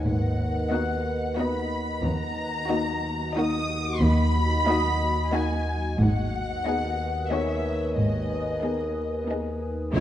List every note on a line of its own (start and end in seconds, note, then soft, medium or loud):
0.00 2.00 D#2 medium
0.00 2.03 B4 soft
0.00 1.99 D#5 soft
0.00 1.99 F#5 soft
0.05 0.58 G#1 medium
0.05 0.58 G#2 medium
0.05 1.35 F#5 medium
0.71 1.20 B3 soft
0.71 1.21 D#4 soft
0.71 1.21 F#4 soft
0.71 1.20 D#5 soft
0.71 4.62 F#6 soft
1.36 1.86 B3 soft
1.36 1.86 D#4 medium
1.36 1.87 F#4 soft
1.36 1.87 D#5 soft
1.36 2.03 B5 medium
2.02 2.55 D#2 medium
2.02 5.95 D#2 medium
2.02 5.99 F#4 soft
2.02 5.95 D#5 soft
2.02 5.94 F#5 medium
2.02 3.35 A#5 medium
2.68 3.18 A#3 medium
2.68 3.18 D#4 medium
2.68 3.18 F#4 medium
2.68 3.18 D#5 medium
3.35 3.85 A#3 medium
3.35 3.85 D#4 medium
3.35 3.85 F#4 medium
3.35 3.84 D#5 medium
3.35 4.01 D#6 medium
4.00 4.53 D#2 medium
4.00 5.33 B5 loud
4.67 5.16 A#3 medium
4.67 5.16 D#4 medium
4.67 5.17 F#4 medium
4.67 5.17 D#5 medium
4.67 8.58 D#6 soft
5.32 5.82 A#3 medium
5.32 5.82 D#4 medium
5.32 5.82 F#4 medium
5.32 5.82 D#5 medium
5.32 5.99 G#5 medium
5.98 6.51 G#1 medium
5.98 9.91 D#2 medium
5.98 6.52 G#2 medium
5.98 9.94 B4 medium
5.98 7.31 F#5 medium
5.98 9.91 G#5 medium
5.98 9.91 D#6 medium
6.65 7.14 B3 medium
6.65 7.14 D#4 medium
6.65 7.15 G#4 medium
6.65 7.14 D#5 medium
7.30 7.80 D#3 medium
7.30 7.80 B3 medium
7.30 7.80 G#4 soft
7.30 10.00 C#5 soft
7.30 7.80 D#5 soft
7.30 7.97 E5 medium
7.30 10.00 C#6 soft
7.96 8.49 G#1 medium
7.96 8.49 G#2 medium
7.96 9.27 D#5 medium
8.62 9.12 B3 soft
8.62 9.12 D#4 soft
8.62 9.12 G#4 soft
8.62 9.11 D#5 soft
9.27 9.77 B3 soft
9.27 9.77 D#4 soft
9.27 9.78 G#4 soft
9.27 9.78 D#5 soft
9.93 10.00 C#2 medium
9.93 10.00 C#3 medium
9.93 10.00 G#3 medium
9.93 10.00 C#4 medium
9.93 10.00 E4 medium
9.93 10.00 C#5 medium
9.93 10.00 G#5 medium